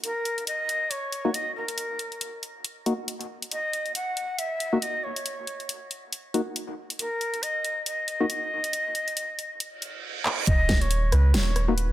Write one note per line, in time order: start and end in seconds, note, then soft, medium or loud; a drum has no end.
0.04 0.44 A#4 loud
0.04 closed hi-hat medium
0.25 closed hi-hat soft
0.38 closed hi-hat soft
0.47 0.92 D#5 loud
0.47 closed hi-hat medium
0.69 closed hi-hat soft
0.90 1.36 C#5 loud
0.90 closed hi-hat medium
1.12 closed hi-hat medium
1.25 1.30 A#3 loud
1.25 1.30 D#4 medium
1.25 1.30 F#4 loud
1.34 1.55 D#5 loud
1.34 closed hi-hat medium
1.56 2.39 A#4 medium
1.68 closed hi-hat medium
1.78 closed hi-hat medium
1.99 closed hi-hat soft
2.12 closed hi-hat soft
2.21 closed hi-hat medium
2.43 closed hi-hat soft
2.64 closed hi-hat medium
2.86 2.93 A#3 medium
2.86 2.93 D#4 medium
2.86 2.93 F#4 medium
2.86 closed hi-hat soft
3.08 closed hi-hat medium
3.21 closed hi-hat soft
3.42 closed hi-hat medium
3.51 3.92 D#5 loud
3.51 closed hi-hat medium
3.73 closed hi-hat soft
3.86 closed hi-hat soft
3.95 4.40 F#5 loud
3.95 closed hi-hat medium
4.17 closed hi-hat soft
4.39 4.84 E5 medium
4.39 closed hi-hat medium
4.60 closed hi-hat soft
4.73 4.78 A#3 loud
4.73 4.78 D#4 medium
4.73 4.78 F#4 loud
4.82 5.05 D#5 medium
4.82 closed hi-hat medium
5.04 5.91 C#5 medium
5.16 closed hi-hat medium
5.26 closed hi-hat medium
5.47 closed hi-hat soft
5.60 closed hi-hat soft
5.69 closed hi-hat medium
5.91 closed hi-hat soft
6.13 closed hi-hat medium
6.34 6.41 A#3 medium
6.34 6.41 D#4 medium
6.34 6.41 F#4 loud
6.34 closed hi-hat soft
6.56 closed hi-hat medium
6.90 closed hi-hat medium
6.99 7.44 A#4 loud
6.99 closed hi-hat medium
7.21 closed hi-hat soft
7.34 closed hi-hat soft
7.43 7.86 D#5 loud
7.43 closed hi-hat medium
7.65 closed hi-hat soft
7.86 10.00 D#5 loud
7.86 closed hi-hat medium
8.08 closed hi-hat soft
8.20 8.26 A#3 loud
8.20 8.26 D#4 medium
8.20 8.26 F#4 loud
8.30 closed hi-hat medium
8.64 closed hi-hat medium
8.73 closed hi-hat medium
8.95 closed hi-hat soft
9.08 closed hi-hat soft
9.17 closed hi-hat medium
9.39 closed hi-hat soft
9.60 closed hi-hat medium
9.60 reverse cymbal medium
9.82 closed hi-hat medium
10.25 clap medium
10.47 11.11 D#1 loud
10.47 10.83 D#5 loud
10.47 kick loud
10.47 closed hi-hat medium
10.69 kick medium
10.69 snare medium
10.69 closed hi-hat medium
10.81 11.14 C#5 loud
10.81 closed hi-hat soft
10.91 closed hi-hat medium
11.12 11.35 C#2 medium
11.12 11.36 B4 medium
11.12 cross-stick medium
11.12 closed hi-hat medium
11.34 11.92 D#1 loud
11.34 11.70 C#5 loud
11.34 snare loud
11.34 closed hi-hat medium
11.56 cross-stick medium
11.56 closed hi-hat medium
11.68 11.73 A#3 loud
11.68 11.73 D#4 medium
11.68 11.73 F#4 loud
11.68 11.92 B4 medium
11.78 closed hi-hat medium